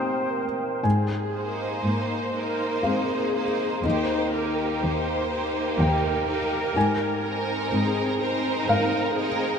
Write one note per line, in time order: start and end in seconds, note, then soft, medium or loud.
0.00 0.81 A#2 soft
0.00 0.43 A#3 soft
0.00 0.80 C4 soft
0.00 0.32 D#4 soft
0.00 0.80 G4 soft
0.00 0.32 C5 soft
0.00 0.45 C5 soft
0.00 0.51 G5 soft
0.00 0.80 G5 soft
0.31 0.84 A#4 soft
0.83 1.71 G#2 soft
0.83 3.80 G#2 soft
0.83 1.81 G#4 soft
0.83 2.80 G#5 medium
1.36 2.33 A#3 soft
1.36 2.33 D#4 soft
1.36 2.33 C5 soft
1.85 2.70 G#2 soft
1.85 3.44 A#3 soft
1.85 2.35 C5 soft
2.34 3.33 A#3 soft
2.34 3.33 D#4 soft
2.34 2.84 A#4 soft
2.34 3.33 C5 soft
2.83 3.70 G#2 soft
2.83 3.80 C4 soft
2.83 3.84 G#4 soft
2.83 3.80 G#4 soft
2.83 3.80 F5 soft
3.36 3.84 A#3 soft
3.36 3.84 D#4 soft
3.36 3.84 C5 soft
3.83 4.69 D#2 medium
3.83 6.72 D#2 soft
3.83 4.34 A#3 soft
3.83 4.34 D#4 soft
3.83 4.33 G4 soft
3.83 4.32 C5 soft
3.83 5.75 D#5 soft
4.33 5.30 A#3 soft
4.33 5.30 D#4 soft
4.33 5.30 G4 soft
4.33 4.82 A#4 soft
4.82 5.67 D#2 soft
4.82 6.37 A#3 soft
4.82 5.79 C5 soft
5.31 6.26 A#3 soft
5.31 6.26 D#4 soft
5.31 6.26 G4 soft
5.79 6.62 D#2 soft
5.79 6.72 D#4 soft
5.79 6.72 G4 soft
5.79 7.72 A#4 medium
5.79 6.71 G5 medium
6.27 6.75 A#3 soft
6.27 6.75 D#4 soft
6.27 6.74 G4 soft
6.76 9.59 G#2 soft
6.76 7.60 G#2 medium
6.76 8.66 G#5 medium
7.22 8.19 C4 soft
7.22 8.19 D#4 soft
7.22 8.19 A#4 soft
7.72 8.55 G#2 soft
7.72 9.26 C4 soft
7.72 8.20 G#4 soft
8.20 9.16 C4 soft
8.20 9.15 D#4 soft
8.20 9.14 A#4 soft
8.20 8.69 C5 medium
8.68 9.50 G#2 medium
8.68 9.59 D#4 soft
8.68 9.16 A#4 medium
8.68 9.59 A#4 soft
8.68 9.59 F5 medium
9.14 9.59 C4 soft
9.14 9.59 D#4 soft
9.14 9.59 G#4 soft
9.14 9.59 A#4 soft